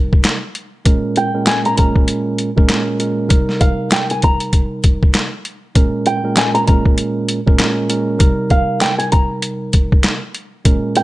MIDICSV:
0, 0, Header, 1, 4, 480
1, 0, Start_track
1, 0, Tempo, 612245
1, 670, Time_signature, 4, 2, 24, 8
1, 8649, End_track
2, 0, Start_track
2, 0, Title_t, "Nylon-string guitar"
2, 0, Program_c, 0, 24
2, 0, Note_on_c, 0, 82, 77
2, 641, Note_off_c, 0, 82, 0
2, 920, Note_on_c, 0, 79, 85
2, 1132, Note_off_c, 0, 79, 0
2, 1155, Note_on_c, 0, 80, 81
2, 1281, Note_off_c, 0, 80, 0
2, 1300, Note_on_c, 0, 82, 82
2, 1385, Note_off_c, 0, 82, 0
2, 1400, Note_on_c, 0, 82, 73
2, 2084, Note_off_c, 0, 82, 0
2, 2827, Note_on_c, 0, 77, 78
2, 3045, Note_off_c, 0, 77, 0
2, 3076, Note_on_c, 0, 79, 82
2, 3201, Note_off_c, 0, 79, 0
2, 3222, Note_on_c, 0, 80, 79
2, 3306, Note_off_c, 0, 80, 0
2, 3325, Note_on_c, 0, 82, 81
2, 4486, Note_off_c, 0, 82, 0
2, 4756, Note_on_c, 0, 79, 75
2, 4969, Note_off_c, 0, 79, 0
2, 5002, Note_on_c, 0, 80, 83
2, 5125, Note_off_c, 0, 80, 0
2, 5132, Note_on_c, 0, 82, 83
2, 5220, Note_off_c, 0, 82, 0
2, 5232, Note_on_c, 0, 82, 70
2, 5920, Note_off_c, 0, 82, 0
2, 6671, Note_on_c, 0, 77, 80
2, 6887, Note_off_c, 0, 77, 0
2, 6909, Note_on_c, 0, 79, 91
2, 7038, Note_off_c, 0, 79, 0
2, 7044, Note_on_c, 0, 80, 77
2, 7136, Note_off_c, 0, 80, 0
2, 7151, Note_on_c, 0, 82, 77
2, 8319, Note_off_c, 0, 82, 0
2, 8597, Note_on_c, 0, 79, 86
2, 8649, Note_off_c, 0, 79, 0
2, 8649, End_track
3, 0, Start_track
3, 0, Title_t, "Tine electric piano"
3, 0, Program_c, 1, 4
3, 0, Note_on_c, 1, 48, 98
3, 0, Note_on_c, 1, 55, 87
3, 0, Note_on_c, 1, 63, 83
3, 0, Note_on_c, 1, 70, 100
3, 306, Note_off_c, 1, 48, 0
3, 308, Note_off_c, 1, 55, 0
3, 310, Note_off_c, 1, 63, 0
3, 311, Note_off_c, 1, 70, 0
3, 666, Note_on_c, 1, 46, 99
3, 670, Note_on_c, 1, 56, 92
3, 673, Note_on_c, 1, 61, 87
3, 676, Note_on_c, 1, 70, 96
3, 1016, Note_off_c, 1, 46, 0
3, 1018, Note_off_c, 1, 56, 0
3, 1020, Note_off_c, 1, 61, 0
3, 1022, Note_off_c, 1, 70, 0
3, 1048, Note_on_c, 1, 46, 95
3, 1050, Note_on_c, 1, 56, 88
3, 1054, Note_on_c, 1, 61, 78
3, 1057, Note_on_c, 1, 70, 92
3, 1364, Note_off_c, 1, 46, 0
3, 1366, Note_off_c, 1, 56, 0
3, 1368, Note_off_c, 1, 61, 0
3, 1369, Note_off_c, 1, 70, 0
3, 1383, Note_on_c, 1, 46, 94
3, 1387, Note_on_c, 1, 56, 84
3, 1389, Note_on_c, 1, 61, 90
3, 1392, Note_on_c, 1, 70, 100
3, 1952, Note_off_c, 1, 46, 0
3, 1954, Note_off_c, 1, 56, 0
3, 1955, Note_off_c, 1, 61, 0
3, 1957, Note_off_c, 1, 70, 0
3, 2006, Note_on_c, 1, 46, 89
3, 2010, Note_on_c, 1, 56, 92
3, 2013, Note_on_c, 1, 61, 87
3, 2015, Note_on_c, 1, 70, 100
3, 2089, Note_off_c, 1, 46, 0
3, 2093, Note_off_c, 1, 56, 0
3, 2095, Note_off_c, 1, 61, 0
3, 2098, Note_on_c, 1, 46, 79
3, 2100, Note_off_c, 1, 70, 0
3, 2102, Note_on_c, 1, 56, 72
3, 2105, Note_on_c, 1, 61, 72
3, 2109, Note_on_c, 1, 70, 85
3, 2329, Note_off_c, 1, 46, 0
3, 2331, Note_off_c, 1, 56, 0
3, 2332, Note_off_c, 1, 61, 0
3, 2334, Note_off_c, 1, 70, 0
3, 2341, Note_on_c, 1, 46, 73
3, 2345, Note_on_c, 1, 56, 67
3, 2348, Note_on_c, 1, 61, 71
3, 2351, Note_on_c, 1, 70, 84
3, 2570, Note_off_c, 1, 46, 0
3, 2571, Note_off_c, 1, 70, 0
3, 2571, Note_on_c, 1, 48, 95
3, 2572, Note_off_c, 1, 56, 0
3, 2574, Note_off_c, 1, 61, 0
3, 2574, Note_on_c, 1, 55, 85
3, 2577, Note_on_c, 1, 63, 86
3, 2580, Note_on_c, 1, 70, 96
3, 4146, Note_off_c, 1, 48, 0
3, 4148, Note_off_c, 1, 55, 0
3, 4149, Note_off_c, 1, 63, 0
3, 4151, Note_off_c, 1, 70, 0
3, 4507, Note_on_c, 1, 46, 93
3, 4510, Note_on_c, 1, 56, 90
3, 4514, Note_on_c, 1, 61, 89
3, 4517, Note_on_c, 1, 70, 99
3, 4857, Note_off_c, 1, 46, 0
3, 4859, Note_off_c, 1, 56, 0
3, 4860, Note_off_c, 1, 61, 0
3, 4862, Note_off_c, 1, 70, 0
3, 4888, Note_on_c, 1, 46, 96
3, 4891, Note_on_c, 1, 56, 89
3, 4895, Note_on_c, 1, 61, 73
3, 4897, Note_on_c, 1, 70, 93
3, 5205, Note_off_c, 1, 46, 0
3, 5206, Note_off_c, 1, 56, 0
3, 5208, Note_off_c, 1, 61, 0
3, 5209, Note_off_c, 1, 70, 0
3, 5224, Note_on_c, 1, 46, 94
3, 5228, Note_on_c, 1, 56, 86
3, 5231, Note_on_c, 1, 61, 85
3, 5235, Note_on_c, 1, 70, 105
3, 5793, Note_off_c, 1, 46, 0
3, 5795, Note_off_c, 1, 56, 0
3, 5796, Note_off_c, 1, 61, 0
3, 5798, Note_off_c, 1, 70, 0
3, 5848, Note_on_c, 1, 46, 90
3, 5851, Note_on_c, 1, 56, 89
3, 5854, Note_on_c, 1, 61, 90
3, 5858, Note_on_c, 1, 70, 101
3, 5934, Note_off_c, 1, 46, 0
3, 5937, Note_off_c, 1, 56, 0
3, 5940, Note_off_c, 1, 61, 0
3, 5943, Note_off_c, 1, 70, 0
3, 5943, Note_on_c, 1, 46, 77
3, 5946, Note_on_c, 1, 56, 74
3, 5949, Note_on_c, 1, 61, 74
3, 5953, Note_on_c, 1, 70, 87
3, 6171, Note_off_c, 1, 46, 0
3, 6173, Note_off_c, 1, 56, 0
3, 6174, Note_off_c, 1, 61, 0
3, 6176, Note_off_c, 1, 70, 0
3, 6184, Note_on_c, 1, 46, 72
3, 6187, Note_on_c, 1, 56, 69
3, 6190, Note_on_c, 1, 61, 69
3, 6192, Note_on_c, 1, 70, 83
3, 6412, Note_off_c, 1, 46, 0
3, 6412, Note_off_c, 1, 70, 0
3, 6413, Note_off_c, 1, 56, 0
3, 6413, Note_on_c, 1, 48, 97
3, 6415, Note_off_c, 1, 61, 0
3, 6416, Note_on_c, 1, 55, 88
3, 6418, Note_on_c, 1, 63, 81
3, 6422, Note_on_c, 1, 70, 101
3, 7987, Note_off_c, 1, 48, 0
3, 7988, Note_off_c, 1, 55, 0
3, 7990, Note_off_c, 1, 63, 0
3, 7991, Note_off_c, 1, 70, 0
3, 8347, Note_on_c, 1, 46, 98
3, 8349, Note_on_c, 1, 56, 90
3, 8353, Note_on_c, 1, 61, 88
3, 8356, Note_on_c, 1, 70, 96
3, 8649, Note_off_c, 1, 46, 0
3, 8649, Note_off_c, 1, 56, 0
3, 8649, Note_off_c, 1, 61, 0
3, 8649, Note_off_c, 1, 70, 0
3, 8649, End_track
4, 0, Start_track
4, 0, Title_t, "Drums"
4, 100, Note_on_c, 9, 36, 96
4, 178, Note_off_c, 9, 36, 0
4, 189, Note_on_c, 9, 42, 89
4, 194, Note_on_c, 9, 39, 90
4, 195, Note_on_c, 9, 38, 110
4, 267, Note_off_c, 9, 42, 0
4, 273, Note_off_c, 9, 38, 0
4, 273, Note_off_c, 9, 39, 0
4, 431, Note_on_c, 9, 42, 77
4, 510, Note_off_c, 9, 42, 0
4, 670, Note_on_c, 9, 42, 101
4, 673, Note_on_c, 9, 36, 110
4, 749, Note_off_c, 9, 42, 0
4, 752, Note_off_c, 9, 36, 0
4, 908, Note_on_c, 9, 42, 62
4, 986, Note_off_c, 9, 42, 0
4, 1151, Note_on_c, 9, 39, 100
4, 1152, Note_on_c, 9, 38, 119
4, 1152, Note_on_c, 9, 42, 101
4, 1230, Note_off_c, 9, 39, 0
4, 1231, Note_off_c, 9, 38, 0
4, 1231, Note_off_c, 9, 42, 0
4, 1296, Note_on_c, 9, 42, 54
4, 1374, Note_off_c, 9, 42, 0
4, 1392, Note_on_c, 9, 42, 83
4, 1400, Note_on_c, 9, 36, 102
4, 1470, Note_off_c, 9, 42, 0
4, 1479, Note_off_c, 9, 36, 0
4, 1534, Note_on_c, 9, 36, 91
4, 1612, Note_off_c, 9, 36, 0
4, 1629, Note_on_c, 9, 42, 94
4, 1707, Note_off_c, 9, 42, 0
4, 1870, Note_on_c, 9, 42, 73
4, 1948, Note_off_c, 9, 42, 0
4, 2020, Note_on_c, 9, 36, 95
4, 2098, Note_off_c, 9, 36, 0
4, 2108, Note_on_c, 9, 42, 89
4, 2113, Note_on_c, 9, 39, 87
4, 2114, Note_on_c, 9, 38, 107
4, 2186, Note_off_c, 9, 42, 0
4, 2192, Note_off_c, 9, 39, 0
4, 2193, Note_off_c, 9, 38, 0
4, 2351, Note_on_c, 9, 42, 74
4, 2429, Note_off_c, 9, 42, 0
4, 2589, Note_on_c, 9, 42, 101
4, 2593, Note_on_c, 9, 36, 114
4, 2668, Note_off_c, 9, 42, 0
4, 2671, Note_off_c, 9, 36, 0
4, 2736, Note_on_c, 9, 38, 39
4, 2814, Note_off_c, 9, 38, 0
4, 2828, Note_on_c, 9, 42, 62
4, 2831, Note_on_c, 9, 36, 91
4, 2907, Note_off_c, 9, 42, 0
4, 2909, Note_off_c, 9, 36, 0
4, 3072, Note_on_c, 9, 38, 123
4, 3072, Note_on_c, 9, 39, 100
4, 3072, Note_on_c, 9, 42, 101
4, 3150, Note_off_c, 9, 39, 0
4, 3151, Note_off_c, 9, 38, 0
4, 3151, Note_off_c, 9, 42, 0
4, 3214, Note_on_c, 9, 42, 52
4, 3293, Note_off_c, 9, 42, 0
4, 3311, Note_on_c, 9, 42, 81
4, 3321, Note_on_c, 9, 36, 100
4, 3389, Note_off_c, 9, 42, 0
4, 3399, Note_off_c, 9, 36, 0
4, 3452, Note_on_c, 9, 42, 57
4, 3530, Note_off_c, 9, 42, 0
4, 3550, Note_on_c, 9, 42, 93
4, 3552, Note_on_c, 9, 36, 97
4, 3629, Note_off_c, 9, 42, 0
4, 3630, Note_off_c, 9, 36, 0
4, 3792, Note_on_c, 9, 42, 74
4, 3796, Note_on_c, 9, 36, 84
4, 3870, Note_off_c, 9, 42, 0
4, 3874, Note_off_c, 9, 36, 0
4, 3941, Note_on_c, 9, 36, 93
4, 4019, Note_off_c, 9, 36, 0
4, 4030, Note_on_c, 9, 42, 92
4, 4036, Note_on_c, 9, 39, 92
4, 4037, Note_on_c, 9, 38, 112
4, 4109, Note_off_c, 9, 42, 0
4, 4114, Note_off_c, 9, 39, 0
4, 4115, Note_off_c, 9, 38, 0
4, 4273, Note_on_c, 9, 42, 76
4, 4351, Note_off_c, 9, 42, 0
4, 4511, Note_on_c, 9, 42, 98
4, 4514, Note_on_c, 9, 36, 108
4, 4590, Note_off_c, 9, 42, 0
4, 4592, Note_off_c, 9, 36, 0
4, 4749, Note_on_c, 9, 42, 64
4, 4827, Note_off_c, 9, 42, 0
4, 4992, Note_on_c, 9, 39, 99
4, 4993, Note_on_c, 9, 38, 123
4, 4993, Note_on_c, 9, 42, 101
4, 5071, Note_off_c, 9, 39, 0
4, 5071, Note_off_c, 9, 42, 0
4, 5072, Note_off_c, 9, 38, 0
4, 5135, Note_on_c, 9, 42, 52
4, 5213, Note_off_c, 9, 42, 0
4, 5233, Note_on_c, 9, 42, 82
4, 5241, Note_on_c, 9, 36, 101
4, 5312, Note_off_c, 9, 42, 0
4, 5319, Note_off_c, 9, 36, 0
4, 5374, Note_on_c, 9, 36, 92
4, 5453, Note_off_c, 9, 36, 0
4, 5470, Note_on_c, 9, 42, 96
4, 5548, Note_off_c, 9, 42, 0
4, 5712, Note_on_c, 9, 42, 76
4, 5790, Note_off_c, 9, 42, 0
4, 5861, Note_on_c, 9, 36, 96
4, 5939, Note_off_c, 9, 36, 0
4, 5949, Note_on_c, 9, 42, 92
4, 5954, Note_on_c, 9, 39, 85
4, 5955, Note_on_c, 9, 38, 110
4, 6027, Note_off_c, 9, 42, 0
4, 6033, Note_off_c, 9, 39, 0
4, 6034, Note_off_c, 9, 38, 0
4, 6190, Note_on_c, 9, 42, 74
4, 6269, Note_off_c, 9, 42, 0
4, 6429, Note_on_c, 9, 42, 100
4, 6432, Note_on_c, 9, 36, 108
4, 6507, Note_off_c, 9, 42, 0
4, 6511, Note_off_c, 9, 36, 0
4, 6666, Note_on_c, 9, 42, 60
4, 6669, Note_on_c, 9, 36, 89
4, 6745, Note_off_c, 9, 42, 0
4, 6748, Note_off_c, 9, 36, 0
4, 6910, Note_on_c, 9, 39, 99
4, 6911, Note_on_c, 9, 38, 127
4, 6911, Note_on_c, 9, 42, 100
4, 6989, Note_off_c, 9, 38, 0
4, 6989, Note_off_c, 9, 39, 0
4, 6989, Note_off_c, 9, 42, 0
4, 7053, Note_on_c, 9, 42, 52
4, 7132, Note_off_c, 9, 42, 0
4, 7150, Note_on_c, 9, 42, 82
4, 7160, Note_on_c, 9, 36, 101
4, 7229, Note_off_c, 9, 42, 0
4, 7238, Note_off_c, 9, 36, 0
4, 7388, Note_on_c, 9, 42, 97
4, 7467, Note_off_c, 9, 42, 0
4, 7629, Note_on_c, 9, 42, 76
4, 7635, Note_on_c, 9, 36, 86
4, 7708, Note_off_c, 9, 42, 0
4, 7713, Note_off_c, 9, 36, 0
4, 7780, Note_on_c, 9, 36, 93
4, 7858, Note_off_c, 9, 36, 0
4, 7867, Note_on_c, 9, 42, 89
4, 7873, Note_on_c, 9, 38, 107
4, 7873, Note_on_c, 9, 39, 86
4, 7946, Note_off_c, 9, 42, 0
4, 7951, Note_off_c, 9, 39, 0
4, 7952, Note_off_c, 9, 38, 0
4, 8111, Note_on_c, 9, 42, 76
4, 8189, Note_off_c, 9, 42, 0
4, 8351, Note_on_c, 9, 42, 102
4, 8353, Note_on_c, 9, 36, 107
4, 8430, Note_off_c, 9, 42, 0
4, 8432, Note_off_c, 9, 36, 0
4, 8589, Note_on_c, 9, 42, 61
4, 8649, Note_off_c, 9, 42, 0
4, 8649, End_track
0, 0, End_of_file